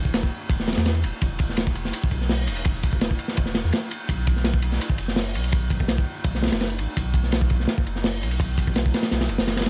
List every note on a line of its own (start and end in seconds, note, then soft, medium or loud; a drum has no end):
0.00 0.30 E1 medium
0.05 kick medium
0.14 snare loud
0.14 ride medium
0.23 kick medium
0.50 0.75 E1 medium
0.50 kick loud
0.50 ride medium
0.60 snare medium
0.68 snare medium
0.68 ride medium
0.73 snare medium
0.73 ride medium
0.77 1.05 E2 medium
0.77 snare loud
0.77 ride medium
0.86 snare loud
0.86 ride medium
0.95 ride soft
1.04 1.12 D1 loud
1.04 ride medium
1.22 1.92 E1 loud
1.22 kick loud
1.22 ride medium
1.39 kick medium
1.39 ride medium
1.49 snare soft
1.57 snare loud
1.57 ride medium
1.67 kick medium
1.75 ride medium
1.85 snare soft
1.93 ride medium
2.04 kick loud
2.11 2.49 B1 loud
2.11 kick medium
2.11 ride medium
2.21 snare soft
2.29 snare loud
2.29 open hi-hat medium
2.47 3.18 E1 medium
2.47 ride medium
2.56 ride soft
2.65 kick loud
2.65 ride loud
2.83 kick medium
2.83 ride medium
2.93 kick medium
3.01 snare loud
3.01 ride medium
3.11 kick medium
3.19 ride medium
3.28 snare medium
3.37 3.63 E1 medium
3.37 kick loud
3.37 ride medium
3.46 snare medium
3.55 snare loud
3.55 ride medium
3.64 3.72 E2 loud
3.64 snare soft
3.72 snare loud
3.72 ride medium
3.91 ride medium
4.09 4.79 B1 loud
4.09 kick loud
4.09 ride loud
4.27 kick loud
4.27 ride medium
4.37 snare soft
4.45 snare loud
4.45 ride medium
4.54 kick loud
4.62 ride medium
4.72 snare soft
4.81 ride medium
4.90 kick medium
4.98 5.36 F#1 loud
4.98 ride medium
5.08 snare soft
5.16 snare loud
5.16 open hi-hat medium
5.35 6.05 B1 medium
5.35 ride medium
5.44 ride soft
5.52 kick loud
5.52 ride medium
5.70 kick medium
5.70 ride medium
5.80 kick loud
5.88 snare loud
5.88 ride medium
5.98 kick loud
6.24 6.50 B1 medium
6.24 kick loud
6.24 ride medium
6.35 snare soft
6.43 snare medium
6.43 ride medium
6.47 snare medium
6.47 ride medium
6.52 6.80 F#1 medium
6.52 snare loud
6.52 ride medium
6.61 snare loud
6.61 ride medium
6.70 ride soft
6.78 6.87 A1 loud
6.78 ride medium
6.97 7.67 B1 loud
6.97 kick loud
6.97 ride loud
7.14 kick loud
7.14 ride medium
7.23 snare soft
7.32 snare loud
7.32 ride medium
7.41 kick loud
7.50 kick medium
7.50 ride medium
7.60 snare soft
7.68 snare loud
7.68 ride medium
7.78 kick loud
7.86 8.24 F#1 medium
7.86 ride medium
7.96 snare soft
8.04 snare loud
8.04 open hi-hat medium
8.22 8.93 B1 medium
8.22 ride medium
8.31 ride soft
8.40 kick loud
8.40 ride loud
8.58 kick medium
8.58 ride medium
8.68 kick loud
8.76 snare loud
8.76 ride medium
8.86 kick medium
8.94 snare medium
8.94 ride medium
9.03 snare loud
9.03 ride medium
9.12 9.29 B1 medium
9.12 snare loud
9.12 ride medium
9.21 snare loud
9.21 ride medium
9.29 9.38 F#1 loud
9.29 ride medium
9.39 9.70 F#1 loud
9.39 snare loud
9.39 open hi-hat medium
9.48 snare loud
9.48 ride medium
9.57 snare medium
9.57 ride medium
9.61 snare medium
9.61 ride medium
9.66 snare loud
9.66 ride medium